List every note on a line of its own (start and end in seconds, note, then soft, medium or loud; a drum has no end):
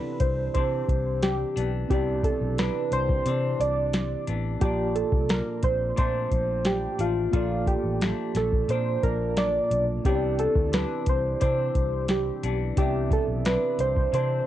0.00 0.53 C3 medium
0.00 0.54 E3 medium
0.00 1.85 C4 medium
0.00 0.56 D4 medium
0.00 1.86 E4 medium
0.00 1.87 G4 soft
0.00 0.21 B4 medium
0.00 1.88 D5 medium
0.20 0.47 C2 medium
0.20 0.53 C5 medium
0.20 kick medium
0.20 closed hi-hat medium
0.54 1.56 C3 medium
0.54 0.82 C3 loud
0.54 1.57 E3 medium
0.54 1.55 D4 medium
0.54 1.24 C5 medium
0.54 kick medium
0.54 closed hi-hat medium
0.88 1.43 C2 medium
0.88 kick medium
0.88 closed hi-hat medium
1.23 1.70 G4 medium
1.23 snare loud
1.23 closed hi-hat medium
1.56 1.84 B1 medium
1.56 1.90 E3 soft
1.56 1.90 B3 soft
1.56 1.90 D4 medium
1.56 closed hi-hat medium
1.88 2.31 C2 medium
1.88 2.57 C3 medium
1.88 2.58 E3 medium
1.88 2.59 B3 medium
1.88 4.57 C4 soft
1.88 2.60 D4 medium
1.88 4.58 E4 medium
1.88 2.25 G4 medium
1.88 4.59 G4 medium
1.88 kick loud
1.88 closed hi-hat medium
1.94 4.60 D5 medium
2.23 2.59 A4 medium
2.23 kick medium
2.23 closed hi-hat medium
2.41 2.68 B1 medium
2.58 3.25 C3 medium
2.58 3.26 E3 medium
2.58 3.28 D4 medium
2.58 2.93 B4 medium
2.58 snare loud
2.58 closed hi-hat medium
2.92 3.19 C2 medium
2.92 3.62 C5 medium
2.92 closed hi-hat medium
3.09 kick medium
3.26 3.53 C3 medium
3.26 4.28 C3 medium
3.26 4.29 E3 medium
3.26 4.27 D4 medium
3.26 closed hi-hat medium
3.60 4.14 C2 medium
3.60 4.24 D5 medium
3.60 closed hi-hat medium
3.93 snare loud
3.93 closed hi-hat medium
4.27 4.55 A1 medium
4.27 4.63 E3 soft
4.27 4.62 B3 soft
4.27 4.62 D4 soft
4.27 closed hi-hat medium
4.60 5.03 A#1 medium
4.60 5.95 A#2 medium
4.60 5.96 F3 medium
4.60 7.29 A#3 medium
4.60 7.30 F4 medium
4.60 4.97 G4 medium
4.60 7.30 A5 medium
4.60 kick loud
4.60 closed hi-hat medium
4.65 5.98 D4 medium
4.65 7.31 D5 medium
4.96 5.31 A4 medium
4.96 closed hi-hat medium
5.12 5.40 C2 medium
5.12 kick medium
5.29 5.61 A#4 medium
5.29 snare loud
5.29 closed hi-hat medium
5.63 5.91 A#1 medium
5.63 5.97 C5 medium
5.63 kick medium
5.63 closed hi-hat medium
5.97 6.99 A#2 medium
5.97 6.25 A#2 medium
5.97 6.99 F3 medium
5.97 6.99 A3 medium
5.97 6.98 D4 medium
5.97 6.68 C5 medium
5.97 kick medium
5.97 closed hi-hat medium
6.31 6.86 A#1 medium
6.31 kick medium
6.31 closed hi-hat medium
6.65 7.01 G4 medium
6.65 snare loud
6.65 closed hi-hat medium
6.99 7.26 A1 medium
6.99 7.33 F3 soft
6.99 7.33 A3 soft
6.99 7.33 D4 soft
6.99 7.32 F4 medium
6.99 closed hi-hat medium
7.31 7.74 A#1 loud
7.31 8.00 A#2 medium
7.31 8.01 F3 medium
7.31 8.02 A3 medium
7.31 8.99 A#3 medium
7.31 8.03 D4 medium
7.31 9.00 F4 medium
7.31 7.65 F4 medium
7.31 9.01 A4 soft
7.31 kick loud
7.31 closed hi-hat medium
7.36 9.02 D5 medium
7.67 8.38 G4 medium
7.67 kick medium
7.67 closed hi-hat medium
7.84 8.11 A1 medium
8.01 8.67 A#2 soft
8.01 8.69 F3 medium
8.01 8.70 A3 medium
8.01 8.72 D4 medium
8.01 snare loud
8.01 closed hi-hat medium
8.35 8.62 A#1 medium
8.35 8.71 A4 medium
8.35 snare soft
8.35 closed hi-hat medium
8.52 kick medium
8.68 8.96 A#2 loud
8.68 10.04 A#2 medium
8.68 10.05 F3 medium
8.68 9.05 C5 medium
8.68 closed hi-hat medium
8.72 10.06 D4 medium
9.03 9.58 A#1 medium
9.03 10.05 A#3 soft
9.03 10.06 F4 soft
9.03 9.38 A#4 medium
9.03 10.06 D5 soft
9.03 10.06 A5 soft
9.03 kick medium
9.03 closed hi-hat medium
9.37 9.85 D5 loud
9.37 snare loud
9.37 closed hi-hat medium
9.71 9.98 B1 medium
9.71 closed hi-hat medium
10.04 10.46 C2 loud
10.04 10.71 C3 medium
10.04 10.72 E3 medium
10.04 10.74 B3 medium
10.04 12.72 C4 soft
10.04 10.74 D4 medium
10.04 12.73 E4 medium
10.04 10.41 G4 medium
10.04 12.74 G4 soft
10.04 kick loud
10.04 closed hi-hat medium
10.09 10.14 C#5 soft
10.15 12.78 D5 medium
10.39 10.71 A4 medium
10.39 closed hi-hat medium
10.56 10.83 D2 medium
10.56 kick medium
10.72 11.39 C3 medium
10.72 11.40 E3 soft
10.72 11.42 D4 medium
10.72 11.09 B4 medium
10.72 snare loud
10.72 closed hi-hat medium
11.06 11.34 C2 medium
11.06 11.40 C5 medium
11.06 kick medium
11.06 closed hi-hat medium
11.40 12.43 C3 medium
11.40 11.69 C3 medium
11.40 12.43 E3 medium
11.40 12.43 D4 medium
11.40 12.05 C5 medium
11.40 kick medium
11.40 closed hi-hat medium
11.75 12.30 C2 medium
11.75 kick medium
11.75 closed hi-hat medium
12.08 12.57 G4 medium
12.08 snare medium
12.08 closed hi-hat medium
12.43 12.71 B1 medium
12.43 12.77 E3 soft
12.43 12.78 B3 soft
12.43 12.77 D4 medium
12.43 closed hi-hat medium
12.77 13.18 C2 loud
12.77 13.44 C3 medium
12.77 13.45 E3 medium
12.77 13.46 B3 medium
12.77 14.47 C4 medium
12.77 13.48 D4 medium
12.77 14.47 E4 soft
12.77 13.13 G4 medium
12.77 14.47 D5 soft
12.77 kick loud
12.77 closed hi-hat medium
12.82 14.47 E5 medium
13.11 13.27 A4 medium
13.11 kick medium
13.11 closed hi-hat medium
13.28 13.55 B1 medium
13.45 14.11 C3 medium
13.45 14.12 E3 medium
13.45 14.13 D4 medium
13.45 13.80 B4 medium
13.45 snare loud
13.45 closed hi-hat medium
13.79 14.06 C2 medium
13.79 14.13 C5 medium
13.79 closed hi-hat medium
13.97 kick medium
14.12 14.47 C3 medium
14.12 14.40 C3 medium
14.12 14.47 E3 medium
14.12 14.47 D4 medium
14.12 14.47 C5 medium
14.12 closed hi-hat medium